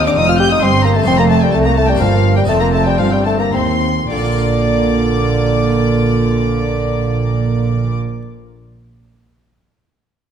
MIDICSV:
0, 0, Header, 1, 8, 480
1, 0, Start_track
1, 0, Key_signature, -2, "major"
1, 0, Tempo, 453515
1, 1126, Time_signature, 3, 2, 24, 8
1, 2104, Tempo, 496689
1, 3064, Tempo, 541028
1, 3544, Tempo, 593472
1, 9035, End_track
2, 0, Start_track
2, 0, Title_t, "Violin section"
2, 0, Program_c, 0, 48
2, 68, Note_on_c, 0, 86, 85
2, 114, Note_off_c, 0, 86, 0
2, 186, Note_on_c, 0, 87, 103
2, 299, Note_off_c, 0, 87, 0
2, 312, Note_on_c, 0, 89, 90
2, 423, Note_off_c, 0, 89, 0
2, 430, Note_on_c, 0, 91, 114
2, 539, Note_off_c, 0, 91, 0
2, 560, Note_on_c, 0, 87, 97
2, 663, Note_off_c, 0, 87, 0
2, 672, Note_on_c, 0, 84, 114
2, 898, Note_off_c, 0, 84, 0
2, 903, Note_on_c, 0, 82, 92
2, 948, Note_off_c, 0, 82, 0
2, 1025, Note_on_c, 0, 81, 85
2, 1133, Note_off_c, 0, 81, 0
2, 1141, Note_on_c, 0, 84, 115
2, 1186, Note_off_c, 0, 84, 0
2, 1264, Note_on_c, 0, 82, 103
2, 1309, Note_off_c, 0, 82, 0
2, 1377, Note_on_c, 0, 81, 102
2, 1490, Note_off_c, 0, 81, 0
2, 1510, Note_on_c, 0, 79, 95
2, 1620, Note_off_c, 0, 79, 0
2, 1624, Note_on_c, 0, 81, 101
2, 1670, Note_off_c, 0, 81, 0
2, 1749, Note_on_c, 0, 82, 91
2, 1861, Note_off_c, 0, 82, 0
2, 1863, Note_on_c, 0, 81, 107
2, 1981, Note_off_c, 0, 81, 0
2, 1998, Note_on_c, 0, 79, 91
2, 2113, Note_off_c, 0, 79, 0
2, 2118, Note_on_c, 0, 77, 102
2, 2462, Note_off_c, 0, 77, 0
2, 2470, Note_on_c, 0, 79, 85
2, 2514, Note_off_c, 0, 79, 0
2, 2575, Note_on_c, 0, 81, 106
2, 2692, Note_off_c, 0, 81, 0
2, 2703, Note_on_c, 0, 82, 92
2, 2750, Note_off_c, 0, 82, 0
2, 2823, Note_on_c, 0, 81, 102
2, 2940, Note_off_c, 0, 81, 0
2, 2947, Note_on_c, 0, 79, 86
2, 3068, Note_off_c, 0, 79, 0
2, 3071, Note_on_c, 0, 77, 93
2, 3184, Note_off_c, 0, 77, 0
2, 3185, Note_on_c, 0, 79, 83
2, 3302, Note_off_c, 0, 79, 0
2, 3303, Note_on_c, 0, 81, 93
2, 3351, Note_off_c, 0, 81, 0
2, 3434, Note_on_c, 0, 82, 85
2, 3548, Note_off_c, 0, 82, 0
2, 3550, Note_on_c, 0, 84, 92
2, 4017, Note_off_c, 0, 84, 0
2, 4017, Note_on_c, 0, 86, 85
2, 7120, Note_off_c, 0, 86, 0
2, 9035, End_track
3, 0, Start_track
3, 0, Title_t, "Violin section"
3, 0, Program_c, 1, 48
3, 54, Note_on_c, 1, 86, 71
3, 166, Note_on_c, 1, 87, 101
3, 176, Note_off_c, 1, 86, 0
3, 290, Note_on_c, 1, 89, 99
3, 291, Note_off_c, 1, 87, 0
3, 408, Note_on_c, 1, 91, 97
3, 412, Note_off_c, 1, 89, 0
3, 528, Note_off_c, 1, 91, 0
3, 528, Note_on_c, 1, 87, 83
3, 641, Note_on_c, 1, 84, 107
3, 649, Note_off_c, 1, 87, 0
3, 878, Note_on_c, 1, 82, 81
3, 883, Note_off_c, 1, 84, 0
3, 1002, Note_off_c, 1, 82, 0
3, 1002, Note_on_c, 1, 81, 80
3, 1117, Note_on_c, 1, 84, 104
3, 1123, Note_off_c, 1, 81, 0
3, 1238, Note_off_c, 1, 84, 0
3, 1239, Note_on_c, 1, 82, 80
3, 1359, Note_on_c, 1, 81, 84
3, 1362, Note_off_c, 1, 82, 0
3, 1481, Note_off_c, 1, 81, 0
3, 1482, Note_on_c, 1, 79, 76
3, 1597, Note_on_c, 1, 81, 92
3, 1606, Note_off_c, 1, 79, 0
3, 1648, Note_off_c, 1, 81, 0
3, 1720, Note_on_c, 1, 82, 76
3, 1846, Note_off_c, 1, 82, 0
3, 1857, Note_on_c, 1, 81, 92
3, 1980, Note_off_c, 1, 81, 0
3, 1982, Note_on_c, 1, 79, 71
3, 2106, Note_off_c, 1, 79, 0
3, 2108, Note_on_c, 1, 77, 84
3, 2450, Note_off_c, 1, 77, 0
3, 2460, Note_on_c, 1, 79, 78
3, 2507, Note_off_c, 1, 79, 0
3, 2579, Note_on_c, 1, 81, 83
3, 2626, Note_off_c, 1, 81, 0
3, 2695, Note_on_c, 1, 82, 83
3, 2814, Note_off_c, 1, 82, 0
3, 2815, Note_on_c, 1, 81, 75
3, 2936, Note_off_c, 1, 81, 0
3, 2941, Note_on_c, 1, 79, 71
3, 3065, Note_off_c, 1, 79, 0
3, 3070, Note_on_c, 1, 77, 86
3, 3178, Note_on_c, 1, 79, 76
3, 3184, Note_off_c, 1, 77, 0
3, 3298, Note_off_c, 1, 79, 0
3, 3304, Note_on_c, 1, 81, 71
3, 3421, Note_off_c, 1, 81, 0
3, 3427, Note_on_c, 1, 82, 78
3, 3475, Note_off_c, 1, 82, 0
3, 3550, Note_on_c, 1, 84, 86
3, 4008, Note_off_c, 1, 84, 0
3, 4017, Note_on_c, 1, 74, 78
3, 7120, Note_off_c, 1, 74, 0
3, 9035, End_track
4, 0, Start_track
4, 0, Title_t, "Harpsichord"
4, 0, Program_c, 2, 6
4, 0, Note_on_c, 2, 39, 60
4, 0, Note_on_c, 2, 60, 53
4, 0, Note_on_c, 2, 63, 58
4, 0, Note_on_c, 2, 67, 57
4, 139, Note_off_c, 2, 39, 0
4, 173, Note_on_c, 2, 41, 66
4, 606, Note_off_c, 2, 41, 0
4, 657, Note_on_c, 2, 43, 61
4, 1059, Note_off_c, 2, 60, 0
4, 1069, Note_off_c, 2, 63, 0
4, 1077, Note_off_c, 2, 67, 0
4, 1079, Note_on_c, 2, 60, 55
4, 1086, Note_off_c, 2, 43, 0
4, 1096, Note_on_c, 2, 63, 57
4, 1114, Note_on_c, 2, 69, 55
4, 1126, Note_on_c, 2, 41, 62
4, 1566, Note_off_c, 2, 41, 0
4, 1613, Note_on_c, 2, 36, 62
4, 2051, Note_off_c, 2, 60, 0
4, 2060, Note_off_c, 2, 63, 0
4, 2062, Note_on_c, 2, 58, 57
4, 2064, Note_off_c, 2, 36, 0
4, 2069, Note_off_c, 2, 69, 0
4, 2076, Note_on_c, 2, 62, 60
4, 2092, Note_on_c, 2, 70, 54
4, 2107, Note_on_c, 2, 43, 62
4, 2536, Note_off_c, 2, 43, 0
4, 2540, Note_off_c, 2, 58, 0
4, 2540, Note_on_c, 2, 60, 52
4, 2546, Note_off_c, 2, 62, 0
4, 2552, Note_on_c, 2, 63, 55
4, 2554, Note_off_c, 2, 70, 0
4, 2566, Note_on_c, 2, 69, 52
4, 2581, Note_on_c, 2, 41, 62
4, 3029, Note_off_c, 2, 41, 0
4, 3032, Note_off_c, 2, 60, 0
4, 3066, Note_on_c, 2, 43, 53
4, 3509, Note_off_c, 2, 43, 0
4, 3549, Note_on_c, 2, 39, 58
4, 3973, Note_off_c, 2, 63, 0
4, 3979, Note_off_c, 2, 69, 0
4, 3984, Note_off_c, 2, 39, 0
4, 4016, Note_on_c, 2, 46, 59
4, 4073, Note_on_c, 2, 58, 55
4, 4129, Note_on_c, 2, 65, 59
4, 4187, Note_on_c, 2, 70, 57
4, 4240, Note_on_c, 2, 77, 54
4, 7119, Note_off_c, 2, 46, 0
4, 7176, Note_off_c, 2, 58, 0
4, 7233, Note_off_c, 2, 65, 0
4, 7290, Note_off_c, 2, 70, 0
4, 7343, Note_off_c, 2, 77, 0
4, 9035, End_track
5, 0, Start_track
5, 0, Title_t, "Viola section"
5, 0, Program_c, 3, 48
5, 0, Note_on_c, 3, 60, 81
5, 1098, Note_off_c, 3, 60, 0
5, 1128, Note_on_c, 3, 57, 76
5, 2105, Note_off_c, 3, 57, 0
5, 2108, Note_on_c, 3, 58, 78
5, 2571, Note_on_c, 3, 60, 71
5, 2575, Note_off_c, 3, 58, 0
5, 3049, Note_off_c, 3, 60, 0
5, 3060, Note_on_c, 3, 60, 69
5, 3533, Note_off_c, 3, 60, 0
5, 3546, Note_on_c, 3, 60, 67
5, 3795, Note_off_c, 3, 60, 0
5, 4021, Note_on_c, 3, 58, 70
5, 7124, Note_off_c, 3, 58, 0
5, 9035, End_track
6, 0, Start_track
6, 0, Title_t, "Bassoon"
6, 0, Program_c, 4, 70
6, 73, Note_on_c, 4, 62, 93
6, 190, Note_on_c, 4, 63, 97
6, 206, Note_off_c, 4, 62, 0
6, 299, Note_off_c, 4, 63, 0
6, 306, Note_on_c, 4, 65, 87
6, 417, Note_off_c, 4, 65, 0
6, 422, Note_on_c, 4, 67, 98
6, 534, Note_off_c, 4, 67, 0
6, 546, Note_on_c, 4, 63, 77
6, 659, Note_on_c, 4, 60, 77
6, 675, Note_off_c, 4, 63, 0
6, 903, Note_on_c, 4, 58, 88
6, 919, Note_off_c, 4, 60, 0
6, 1017, Note_on_c, 4, 57, 80
6, 1033, Note_off_c, 4, 58, 0
6, 1128, Note_off_c, 4, 57, 0
6, 1134, Note_on_c, 4, 60, 106
6, 1247, Note_off_c, 4, 60, 0
6, 1265, Note_on_c, 4, 58, 93
6, 1373, Note_off_c, 4, 58, 0
6, 1380, Note_on_c, 4, 57, 74
6, 1491, Note_off_c, 4, 57, 0
6, 1511, Note_on_c, 4, 55, 81
6, 1635, Note_on_c, 4, 57, 95
6, 1651, Note_off_c, 4, 55, 0
6, 1760, Note_on_c, 4, 58, 79
6, 1776, Note_off_c, 4, 57, 0
6, 1869, Note_off_c, 4, 58, 0
6, 1882, Note_on_c, 4, 57, 90
6, 1991, Note_off_c, 4, 57, 0
6, 2003, Note_on_c, 4, 55, 78
6, 2125, Note_on_c, 4, 53, 69
6, 2139, Note_off_c, 4, 55, 0
6, 2465, Note_off_c, 4, 53, 0
6, 2478, Note_on_c, 4, 55, 75
6, 2579, Note_off_c, 4, 55, 0
6, 2584, Note_on_c, 4, 57, 95
6, 2708, Note_on_c, 4, 58, 82
6, 2722, Note_off_c, 4, 57, 0
6, 2822, Note_off_c, 4, 58, 0
6, 2834, Note_on_c, 4, 57, 74
6, 2945, Note_off_c, 4, 57, 0
6, 2951, Note_on_c, 4, 55, 77
6, 3074, Note_on_c, 4, 53, 87
6, 3088, Note_off_c, 4, 55, 0
6, 3186, Note_off_c, 4, 53, 0
6, 3193, Note_on_c, 4, 55, 67
6, 3304, Note_off_c, 4, 55, 0
6, 3311, Note_on_c, 4, 57, 82
6, 3424, Note_off_c, 4, 57, 0
6, 3430, Note_on_c, 4, 58, 73
6, 3546, Note_off_c, 4, 58, 0
6, 3556, Note_on_c, 4, 60, 65
6, 3886, Note_off_c, 4, 60, 0
6, 4022, Note_on_c, 4, 50, 80
6, 7126, Note_off_c, 4, 50, 0
6, 9035, End_track
7, 0, Start_track
7, 0, Title_t, "Cello section"
7, 0, Program_c, 5, 48
7, 0, Note_on_c, 5, 39, 81
7, 167, Note_off_c, 5, 39, 0
7, 173, Note_on_c, 5, 41, 76
7, 639, Note_off_c, 5, 41, 0
7, 647, Note_on_c, 5, 43, 75
7, 1114, Note_off_c, 5, 43, 0
7, 1126, Note_on_c, 5, 41, 93
7, 1599, Note_off_c, 5, 41, 0
7, 1612, Note_on_c, 5, 36, 86
7, 2096, Note_off_c, 5, 36, 0
7, 2105, Note_on_c, 5, 43, 76
7, 2574, Note_off_c, 5, 43, 0
7, 2577, Note_on_c, 5, 41, 78
7, 3056, Note_off_c, 5, 41, 0
7, 3067, Note_on_c, 5, 43, 73
7, 3546, Note_off_c, 5, 43, 0
7, 3550, Note_on_c, 5, 39, 66
7, 4017, Note_off_c, 5, 39, 0
7, 4017, Note_on_c, 5, 46, 67
7, 7120, Note_off_c, 5, 46, 0
7, 9035, End_track
8, 0, Start_track
8, 0, Title_t, "Double bass section"
8, 0, Program_c, 6, 48
8, 0, Note_on_c, 6, 39, 99
8, 171, Note_off_c, 6, 39, 0
8, 179, Note_on_c, 6, 29, 89
8, 642, Note_off_c, 6, 29, 0
8, 649, Note_on_c, 6, 31, 85
8, 1115, Note_off_c, 6, 31, 0
8, 1125, Note_on_c, 6, 29, 99
8, 1598, Note_off_c, 6, 29, 0
8, 1608, Note_on_c, 6, 36, 82
8, 2094, Note_off_c, 6, 36, 0
8, 2101, Note_on_c, 6, 31, 76
8, 2571, Note_on_c, 6, 29, 94
8, 2572, Note_off_c, 6, 31, 0
8, 3053, Note_off_c, 6, 29, 0
8, 3059, Note_on_c, 6, 31, 78
8, 3542, Note_off_c, 6, 31, 0
8, 3544, Note_on_c, 6, 39, 67
8, 4014, Note_off_c, 6, 39, 0
8, 4017, Note_on_c, 6, 34, 75
8, 7120, Note_off_c, 6, 34, 0
8, 9035, End_track
0, 0, End_of_file